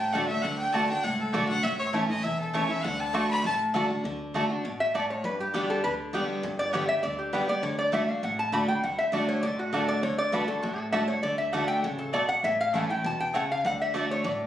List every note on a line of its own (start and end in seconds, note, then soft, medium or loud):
0.00 0.21 A1 medium
0.00 0.41 A2 medium
0.00 0.14 G5 medium
0.13 0.29 D3 medium
0.13 0.23 A3 loud
0.13 0.29 A3 medium
0.13 0.29 D4 loud
0.13 0.23 F#4 medium
0.13 0.27 F#4 loud
0.13 0.23 D5 loud
0.13 0.27 F#5 medium
0.13 0.23 A5 medium
0.28 0.44 D4 soft
0.28 0.43 F#4 medium
0.28 0.44 E5 loud
0.42 0.62 D2 loud
0.42 0.72 D3 medium
0.42 0.58 F#5 loud
0.58 0.75 G5 loud
0.73 0.99 D2 medium
0.73 0.89 D3 medium
0.73 0.83 A3 medium
0.73 0.89 A3 medium
0.73 0.89 D4 medium
0.73 0.83 F#4 loud
0.73 0.88 F#4 loud
0.73 0.83 D5 medium
0.73 0.89 A5 loud
0.73 0.83 A5 loud
0.89 1.04 D4 medium
0.89 1.03 F#4 medium
0.89 1.05 G5 loud
1.04 1.30 C#2 medium
1.04 1.61 A2 medium
1.04 1.19 F#5 medium
1.20 1.35 A4 medium
1.33 1.59 B1 medium
1.33 1.49 D3 medium
1.33 1.43 A3 medium
1.33 1.49 A3 loud
1.33 1.50 D4 medium
1.33 1.43 F#4 loud
1.33 1.48 F#4 loud
1.33 1.48 D5 medium
1.33 1.43 D5 medium
1.33 1.44 A5 loud
1.48 1.64 D4 soft
1.48 1.63 F#4 medium
1.48 1.65 F#5 loud
1.63 2.01 A1 medium
1.63 2.22 A2 medium
1.63 1.79 E5 loud
1.79 1.88 C#5 loud
1.93 2.09 E3 medium
1.93 2.03 A3 medium
1.93 2.09 A3 medium
1.93 2.09 C#4 loud
1.93 2.03 E4 loud
1.93 2.08 E4 loud
1.93 2.03 C#5 loud
1.93 2.03 A5 loud
2.09 2.24 C#4 soft
2.09 2.23 E4 medium
2.09 2.25 D#5 loud
2.23 2.61 E1 medium
2.23 2.82 E2 medium
2.23 2.39 E5 medium
2.40 2.56 A4 medium
2.53 2.69 E3 medium
2.53 2.63 A3 medium
2.53 2.69 A3 loud
2.53 2.69 C#4 medium
2.53 2.63 E4 medium
2.53 2.67 E4 loud
2.53 2.64 C#5 loud
2.53 2.72 C#5 medium
2.53 2.64 A5 loud
2.69 2.84 C#4 medium
2.69 2.83 E4 medium
2.69 2.85 E5 loud
2.84 3.22 D2 medium
2.84 3.12 D3 loud
2.84 3.02 F#5 medium
3.01 3.16 A5 loud
3.13 3.42 D3 medium
3.13 3.23 A3 medium
3.13 3.43 A3 medium
3.13 3.43 D4 medium
3.13 3.24 F#4 medium
3.13 3.43 F#4 loud
3.13 3.24 D5 medium
3.13 3.24 A5 loud
3.13 3.30 C#6 loud
3.31 3.44 B5 loud
3.44 3.82 A1 medium
3.44 4.01 A2 medium
3.44 3.55 A5 loud
3.74 3.89 D3 medium
3.74 3.83 A3 loud
3.74 3.89 A3 medium
3.74 3.90 D4 medium
3.74 3.84 F#4 loud
3.74 3.89 F#4 loud
3.74 3.84 D5 medium
3.74 3.84 A5 loud
3.90 4.05 D4 soft
3.90 4.04 F#4 medium
4.04 4.41 D2 medium
4.04 4.33 D3 medium
4.34 4.49 D3 medium
4.34 4.44 A3 medium
4.34 4.50 A3 medium
4.34 4.50 D4 medium
4.34 4.44 F#4 medium
4.34 4.48 F#4 loud
4.34 4.44 D5 medium
4.34 4.44 A5 loud
4.50 4.65 D4 soft
4.50 4.64 F#4 medium
4.64 5.01 A1 medium
4.64 4.93 B2 medium
4.80 4.94 E5 loud
4.94 5.23 A2 medium
4.94 5.04 A3 medium
4.94 5.04 F#4 medium
4.94 5.10 D5 medium
4.94 5.04 D5 loud
4.94 5.04 A5 medium
5.10 5.24 C#5 medium
5.24 5.61 G1 loud
5.24 5.81 G2 medium
5.24 5.40 B4 medium
5.40 5.54 G4 medium
5.54 5.82 D3 medium
5.54 5.83 G3 loud
5.54 5.63 B3 medium
5.54 5.83 B3 loud
5.54 5.69 F#4 medium
5.54 5.63 G4 medium
5.54 5.83 G4 loud
5.54 5.64 D5 loud
5.54 5.64 G5 loud
5.70 5.83 A4 medium
5.84 6.21 D2 medium
5.84 6.12 D3 medium
5.84 5.93 B4 medium
6.13 6.42 D3 medium
6.13 6.42 G3 medium
6.13 6.23 B3 medium
6.13 6.43 B3 medium
6.13 6.23 G4 medium
6.13 6.43 G4 loud
6.13 6.23 D5 loud
6.13 6.24 G5 loud
6.43 6.81 G1 loud
6.43 7.01 G2 medium
6.59 6.73 D5 loud
6.73 6.89 D3 loud
6.73 6.89 G3 loud
6.73 6.83 B3 medium
6.73 6.89 B3 loud
6.73 6.83 G4 medium
6.73 6.88 G4 medium
6.73 6.88 C#5 medium
6.73 6.83 D5 loud
6.73 6.83 G5 loud
6.89 7.04 B3 soft
6.89 7.03 G4 medium
6.89 7.02 E5 loud
7.03 7.40 D2 medium
7.03 7.31 D3 medium
7.03 7.18 D5 medium
7.19 7.33 G4 medium
7.33 7.48 D3 medium
7.33 7.48 G3 medium
7.33 7.42 B3 medium
7.33 7.49 B3 medium
7.33 7.43 G4 medium
7.33 7.47 G4 loud
7.33 7.48 B4 medium
7.33 7.43 D5 medium
7.33 7.43 G5 loud
7.48 7.64 B3 soft
7.48 7.63 G4 medium
7.48 7.63 D5 loud
7.63 8.00 D2 medium
7.63 7.91 D3 medium
7.63 7.78 C#5 medium
7.79 7.93 D5 loud
7.92 8.08 D3 medium
7.92 8.02 A3 medium
7.92 8.08 A3 medium
7.92 8.08 D4 medium
7.92 8.02 F#4 loud
7.92 8.07 F#4 medium
7.92 8.03 D5 medium
7.92 8.09 E5 medium
7.92 8.03 A5 medium
8.08 8.23 D4 medium
8.08 8.22 F#4 medium
8.08 8.23 F5 medium
8.23 8.60 A1 medium
8.23 8.80 A2 medium
8.23 8.39 F#5 medium
8.39 8.53 A5 loud
8.52 8.68 D3 medium
8.52 8.62 A3 medium
8.52 8.68 A3 medium
8.52 8.68 D4 medium
8.52 8.62 F#4 medium
8.52 8.67 F#4 loud
8.52 8.63 D5 medium
8.52 8.63 A5 medium
8.52 8.68 B5 loud
8.68 8.83 D4 soft
8.68 8.82 F#4 medium
8.68 8.83 G5 loud
8.83 9.20 D2 medium
8.83 9.11 D3 medium
8.83 8.98 F#5 medium
8.99 9.13 E5 loud
9.12 9.41 D3 loud
9.12 9.22 A3 medium
9.12 9.42 A3 loud
9.12 9.42 D4 loud
9.12 9.22 F#4 medium
9.12 9.42 F#4 loud
9.12 9.28 D5 medium
9.12 9.23 D5 medium
9.12 9.23 A5 loud
9.29 9.43 C#5 medium
9.42 9.80 A1 medium
9.42 10.00 A2 medium
9.42 9.58 D5 loud
9.59 9.73 F#4 medium
9.72 10.01 D3 medium
9.72 10.02 A3 medium
9.72 9.82 A3 medium
9.72 10.02 D4 medium
9.72 9.83 F#4 medium
9.72 10.02 F#4 medium
9.72 9.89 A4 medium
9.72 9.83 D5 medium
9.72 9.83 A5 loud
9.88 10.03 D5 loud
10.03 10.40 D2 loud
10.03 10.31 D3 medium
10.03 10.18 C#5 medium
10.18 10.33 D5 loud
10.32 10.48 D3 medium
10.32 10.42 A3 medium
10.32 10.48 A3 loud
10.32 10.48 D4 medium
10.32 10.42 F#4 medium
10.32 10.47 F#4 loud
10.32 10.47 B4 medium
10.32 10.43 D5 loud
10.32 10.43 A5 medium
10.48 10.63 D4 medium
10.48 10.62 F#4 medium
10.48 10.62 A4 medium
10.63 11.01 A1 medium
10.63 11.21 A2 medium
10.63 10.78 F#4 medium
10.78 10.87 A4 medium
10.92 11.08 D3 medium
10.92 11.02 A3 medium
10.92 11.08 A3 medium
10.92 11.08 D4 medium
10.92 11.02 F#4 loud
10.92 11.07 F#4 medium
10.92 11.03 D5 medium
10.92 11.08 E5 medium
10.92 11.03 A5 loud
11.08 11.24 D4 soft
11.08 11.23 F#4 medium
11.08 11.22 C#5 medium
11.23 11.61 D2 medium
11.23 11.52 D3 loud
11.23 11.38 D5 medium
11.38 11.52 E5 loud
11.53 11.82 D3 medium
11.53 11.62 A3 medium
11.53 11.82 A3 loud
11.53 11.83 D4 loud
11.53 11.62 F#4 medium
11.53 11.83 F#4 loud
11.53 11.63 D5 loud
11.53 11.67 F#5 medium
11.53 11.63 A5 loud
11.68 11.83 G5 loud
11.83 12.21 A1 medium
11.83 12.13 C#3 loud
11.83 11.98 F#5 loud
11.99 12.13 A4 medium
12.13 12.43 B2 medium
12.13 12.23 A3 medium
12.13 12.23 F#4 medium
12.13 12.29 D5 medium
12.13 12.23 D5 loud
12.13 12.23 A5 loud
12.29 12.43 F#5 loud
12.43 12.81 A1 medium
12.43 13.02 A2 medium
12.43 12.59 E5 medium
12.61 12.74 F5 loud
12.73 12.89 E3 medium
12.73 12.83 A3 medium
12.73 12.89 A3 medium
12.73 12.90 C#4 medium
12.73 12.83 E4 medium
12.73 12.88 E4 loud
12.73 12.83 C#5 medium
12.73 12.90 F#5 medium
12.73 12.83 A5 medium
12.89 13.04 C#4 medium
12.89 13.04 E4 medium
12.89 13.04 G5 medium
13.04 13.42 E1 medium
13.04 13.33 B2 medium
13.04 13.20 A5 loud
13.20 13.34 G5 loud
13.34 13.64 C#3 medium
13.34 13.43 A3 medium
13.34 13.44 E4 medium
13.34 13.44 C#5 medium
13.34 13.50 F#5 medium
13.34 13.44 A5 loud
13.52 13.65 F5 loud
13.65 14.02 D2 medium
13.65 13.93 D3 medium
13.65 13.80 F#5 loud
13.82 13.95 E5 medium
13.94 14.23 D3 medium
13.94 14.04 A3 medium
13.94 14.24 A3 medium
13.94 14.24 D4 medium
13.94 14.04 F#4 medium
13.94 14.24 F#4 medium
13.94 14.04 D5 loud
13.94 14.11 D5 medium
13.94 14.04 A5 loud
14.11 14.26 C#5 medium
14.24 14.47 A1 medium
14.24 14.47 A2 loud
14.24 14.47 D5 loud